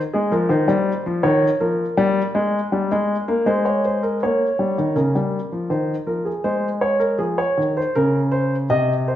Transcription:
0.13 G#3 G#4
0.32 F3 A#4
0.49 D#3 C5
0.68 G3
1.06 F3
1.23 D#3 C#5
1.60 F3 A#4
1.97 G3
2.35 G#3
2.72 G3
2.92 G#3
3.28 A#3
3.46 G#3 C5
3.65 C#5
3.85 C5
4.03 A#4
4.23 A#3 C#5
4.59 G3
4.78 D#3
4.96 C#3 A#4
5.15 G3
5.52 F3
5.70 D#3 C5
6.06 F3 A#4
6.25 G#4
6.44 G#3 C5
6.81 C#5
7.00 A#4
7.18 F3 G#4
7.38 C#5
7.57 D#3
7.77 C5
7.95 C#3 A#4
8.32 C5
8.70 C3 D#5
9.08 C5

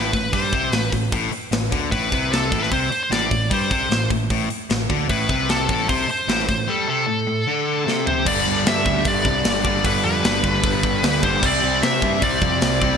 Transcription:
Already playing: A1 A2 B4
0.13 A1 A2, kick, open hi-hat
0.33 G2 G3 C5, kick, open hi-hat
0.53 C2 C3, kick, open hi-hat
0.72 A1 A2 B4, snare, open hi-hat
0.92 A1 A2, kick, open hi-hat
1.12 A1 A2, kick, open hi-hat
1.32 muted distorted electric guitar stroke, muted overdriven electric guitar stroke, open hi-hat
1.51 A1 A2, snare, open hi-hat
1.72 D2 D3, kick, open hi-hat
1.91 A1 A2 B4, kick, open hi-hat
2.11 C2 C3, kick, open hi-hat
2.33 A4, snare, open hi-hat
2.52 A1 A2, kick, open hi-hat
2.63 B4, snare
2.72 C2 C3 C5, kick, open hi-hat
2.91 muted distorted electric guitar stroke, muted overdriven electric guitar stroke, open hi-hat
3.03 C5
3.11 A1 A2 D5, snare, open hi-hat
3.31 A1 A2, kick, open hi-hat
3.50 G2 G3 C5, kick, open hi-hat
3.70 C2 C3, kick, open hi-hat
3.90 A1 A2, snare, open hi-hat
4.10 A1 A2, kick, open hi-hat
4.30 A1 A2, kick, open hi-hat
4.50 muted distorted electric guitar stroke, muted overdriven electric guitar stroke, open hi-hat
4.70 A1 A2, snare, open hi-hat
4.89 D2 D3, kick, open hi-hat
5.09 A1 A2 B4, kick, open hi-hat
5.29 C2 C3, kick, open hi-hat
5.49 A4, snare, open hi-hat
5.69 A1 A2, kick, open hi-hat
5.89 C2 C3 C5, kick, open hi-hat
6.08 C5, muted picked electric bass stroke, muted distorted electric guitar stroke, muted overdriven electric guitar stroke, open hi-hat
6.28 A1 A2, snare, open hi-hat
6.40 snare
6.48 A1 A2, kick, open hi-hat
6.68 G3 A4
6.88 C3 A4
7.07 A2
7.27 A2
7.47 D3
7.86 C3, snare
8.07 C5, floor tom
8.25 G1 G2 D3 G3 B3 D4 A4 D5, kick, crash
8.46 G1
8.66 G2 E5, snare, open hi-hat
8.86 D2, kick
9.04 G1 G2 D3 G3 B3 D4 D5, kick, open hi-hat
9.25 C2, kick
9.44 G1, snare, open hi-hat
9.64 G1 G2 D3 G3, kick
9.84 G1 G2 D3 G3 B3 D4 B4, kick, open hi-hat
10.05 F2 B4
10.24 G1, snare, open hi-hat
10.44 G1, kick
10.63 G1 G2 D3 G3 B3 D4, kick, open hi-hat
10.83 G1, kick
11.03 D2, snare, open hi-hat
11.22 G1 G2 D3 G3 C5, kick
11.42 C2 C3 G3 C4 E4 G4 D5, kick, crash
11.46 D5
11.63 C2
11.83 C3 E5, snare, open hi-hat
12.02 G2, kick
12.21 C2 C3 G3 C4 E4 D5, kick, open hi-hat
12.42 F2, kick
12.61 C2, snare, open hi-hat
12.81 C2 C3 G3 C4, kick

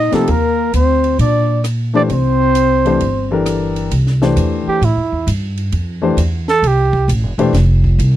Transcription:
Already playing: D#4 D#5
0.11 C3 F3 A3 A#3 D#4 G4 A4, muted upright bass stroke, snare, ride
0.27 D#2 A#3 A#4, ride
0.73 D2 C4 C5, hi-hat pedal, ride
1.04 ride
1.19 A#2 D4 D5, ride
1.64 cross-stick, hi-hat pedal, ride
1.93 E3 A3 D4 G4 C5 D5
2.09 C2 C4 C5, ride
2.55 hi-hat pedal, ride
2.85 E3 A3 D4 G4 C5, ride
3.00 G1, ride
3.31 E3 D4 G4 A4 A#4
3.46 cross-stick, hi-hat pedal, ride
3.76 ride
3.91 C2, ride
4.07 snare
4.22 E3 A3 D4 G4 C5, snare
4.36 E2, hi-hat pedal, ride
4.67 G4, muted upright bass stroke
4.81 A2 E4, ride
4.96 F2
5.12 E2
5.27 G2, hi-hat pedal, ride
5.57 ride
5.72 F2, ride
6.02 E3 A3 D4 G4 C5
6.17 E2, hi-hat pedal, ride
6.48 A4, snare
6.62 C2, ride
6.67 G4
6.93 kick
7.08 A1, hi-hat pedal, ride
7.23 F1
7.38 E1 E3 A3 D4 G4 C5, ride
7.53 F1, snare, ride
7.84 kick
7.99 C2, hi-hat pedal, ride

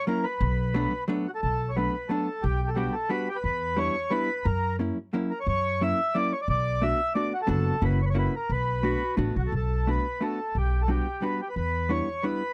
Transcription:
0.07 F#3 A#3 C#4 E4 A#4
0.24 B4
0.41 B1
0.74 F#3 A3 B3 D4
1.08 F#3 A3 B3 D4
1.28 F#4
1.35 A4
1.42 B1 A4
1.69 C#5
1.76 F#3 A3 B3 D4 B4
2.09 F#3 A3 B3 D4 A4
2.43 B1 G4
2.68 A4
2.75 G3 B3 D4 F#4 G4
2.92 A4
3.09 G3 B3 D4 F#4 B4
3.29 G4
3.36 B4
3.44 E2 B4
3.76 G3 B3 D4 E4 C#5
4.10 G3 B3 D4 E4 B4
4.45 F#2 A#4
4.79 F#3 A#3 C#4 E4
5.13 F#3 A#3 C#4 E4
5.31 A#4
5.40 C#5
5.47 F#2 C#5
5.81 F#3 A#3 C#4 E4 E5
6.14 F#3 A#3 C#4 E4 D5
6.33 C#5
6.42 D5
6.48 B1 D5
6.82 A3 B3 D4 F#4 E5
7.15 A3 B3 D4 F#4 D5
7.34 F#4
7.42 A4
7.47 F#1 F#3 B3 D4 F#4 A4
7.81 F#1 A#3 C#4 E4 F#4 B4
8.02 B4 C#5
8.10 C#5
8.15 A#3 C#4 E4 F#4 B4
8.36 A#4
8.49 B1 B4
8.82 A3 B3 D4 F#4
9.17 A1 A3 B3 D4 F#4
9.36 B1 F#4
9.47 A4
9.52 B1 A4
9.87 A3 B3 D4 F#4 B4
10.21 A3 B3 D4 F#4 A4
10.55 B1 G4
10.82 A4
10.88 G3 B3 D4 F#4 G4
11.22 G3 B3 D4 F#4 B4
11.42 G4
11.49 B4
11.56 E2 B4
11.89 G3 B3 D4 E4 C#5
12.23 G3 B3 D4 E4 B4

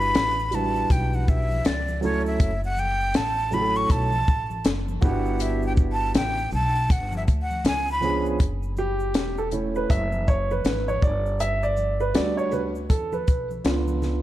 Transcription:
Already playing: G1 G3 D4 E4 F#4 B4 B5
0.01 shaker
0.15 A1, snare, closed hi-hat, shaker
0.39 shaker
0.51 G3 D4 E4, closed hi-hat, low conga, shaker
0.53 F#4 B4 A5, shaker
0.75 shaker
0.90 B1 G5, kick, closed hi-hat, shaker
1.13 F#5, high conga, shaker
1.28 E5, kick, shaker
1.51 high conga, shaker
1.65 C#2 D5, snare, closed hi-hat, high conga, shaker
1.88 high conga, shaker
2.01 F#3 A3 C#4 E4 A4 C#5, low conga, shaker
2.26 E5, shaker
2.40 F#1, kick, closed hi-hat, shaker
2.63 F#5, shaker
2.77 G5, high conga, shaker
3.01 shaker
3.14 A1 A5, snare, closed hi-hat, shaker
3.38 shaker
3.51 F#3 A3 C#4, low conga, shaker
3.53 E4 G4 B5, shaker
3.61 A4
3.75 C#6, shaker
3.90 B1 A5, kick, closed hi-hat, shaker
4.12 high conga, shaker
4.28 A1, kick, shaker
4.50 high conga, shaker
4.64 F#1, snare, closed hi-hat, high conga, shaker
4.88 high conga, shaker
5.01 G1 B3 D4 E4 F#4 G4 F#5, kick, low conga, shaker
5.26 shaker
5.39 E5, closed hi-hat, shaker
5.62 shaker
5.67 G5
5.77 kick, shaker
5.92 A5
6.00 shaker
6.15 A1 G5, snare, closed hi-hat, low conga, shaker
6.38 shaker
6.51 B1 A5, low conga, shaker
6.75 shaker
6.89 G1 F#5, kick, closed hi-hat, shaker
7.12 high conga, shaker
7.17 E5
7.28 D2, kick, closed hi-hat, shaker
7.42 F#5
7.51 high conga, shaker
7.64 C#2 G#5, snare, closed hi-hat, high conga, shaker
7.88 B5, shaker
8.01 F3 B3 C#4 D4 G#4, low conga, shaker
8.26 shaker
8.39 F#1, kick, closed hi-hat, shaker
8.63 shaker
8.77 G4, high conga, shaker
9.00 shaker
9.14 E1, snare, closed hi-hat, shaker
9.38 A4, shaker
9.51 A3 C#4 E4, closed hi-hat, low conga, shaker
9.75 B4, shaker
9.90 F#1 E5, kick, closed hi-hat, shaker
10.12 high conga, shaker
10.28 C#5, kick, shaker
10.51 B4, high conga, shaker
10.65 G#1, snare, closed hi-hat, high conga, shaker
10.88 C#5, high conga, shaker
11.02 G1 D5, kick, low conga, shaker
11.26 shaker
11.40 E5, closed hi-hat, shaker
11.63 D5, shaker
11.77 high conga, shaker
12.00 B4, shaker
12.14 D2 G3 D4 F#4 D5, snare, closed hi-hat, shaker
12.37 C#5, shaker
12.51 B4, low conga, shaker
12.75 shaker
12.90 E2 A4, kick, closed hi-hat, shaker
13.12 B4, high conga, shaker
13.28 B1, kick, closed hi-hat, shaker
13.51 high conga, shaker
13.64 C#2 B3 D4 F4, snare, closed hi-hat, high conga, shaker
13.88 high conga, shaker
14.02 snare, low conga, shaker

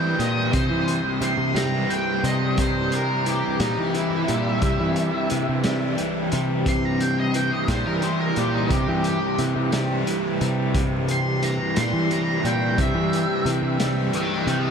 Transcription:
Already playing: C2 G2 C3 E3 G3 G5
0.19 A#2 G3 D#5, closed hi-hat
0.38 C3
0.52 C3 E3 G3 G4 C5, kick, closed hi-hat
0.71 E3
0.88 closed hi-hat
1.00 C2
1.21 C3 E3 C6, closed hi-hat
1.37 C3
1.55 C3 G3 A#5, snare, closed hi-hat
1.62 G2
1.90 E3 G5, closed hi-hat
2.24 C3 G3 D#5, closed hi-hat
2.58 C3 C5, kick, closed hi-hat
2.87 C3
2.92 A#4, closed hi-hat
3.26 E3 G4, closed hi-hat
3.46 C2
3.60 A#2 G3 D#4, snare, closed hi-hat
3.77 E3
3.94 E3 E4, closed hi-hat
4.08 G2
4.28 A#2 G3, closed hi-hat
4.62 C3, kick, closed hi-hat
4.70 C3
4.80 E3
4.96 closed hi-hat
5.30 C3 E3, closed hi-hat
5.35 C3
5.49 C3
5.64 C3 G3, snare, closed hi-hat
5.98 C2 E3, closed hi-hat
6.32 C3 G3, closed hi-hat
6.61 G2
6.66 C3 C6, kick, closed hi-hat
6.85 A#5
7.00 G5, closed hi-hat
7.20 C3 D#5
7.34 E3 G5, closed hi-hat
7.53 D#5
7.68 A#2 G3 C5, kick, snare, closed hi-hat
7.84 C3 E3 A#4
8.02 E3 C5, closed hi-hat
8.21 A#4
8.36 A#2 G3 G4, closed hi-hat
8.46 C2
8.54 D#4
8.70 C3 G4, kick, closed hi-hat
8.89 E3
9.04 G2 G4, closed hi-hat
9.39 C3 E3, closed hi-hat
9.56 C3
9.69 C3, snare, closed hi-hat
9.74 G3
10.07 E3, closed hi-hat
10.33 C3
10.41 C3 G3, closed hi-hat
10.75 C3, kick, closed hi-hat
10.94 C2
11.08 C6, closed hi-hat
11.43 E3 A#5, closed hi-hat
11.55 G2
11.76 A#2 G3 C6, snare, closed hi-hat
11.93 E3
12.11 E3 A#5, closed hi-hat
12.20 C3
12.44 A#2 G3 G5, closed hi-hat
12.78 C3 E5, kick, closed hi-hat
12.94 E3
13.13 closed hi-hat
13.45 C2 C3 E3, closed hi-hat
13.63 C3
13.80 C3 G3, snare, closed hi-hat
14.06 G2
14.13 E3 D#5 G5, closed hi-hat
14.47 C3 G3 D#5 G5, closed hi-hat
14.67 C3

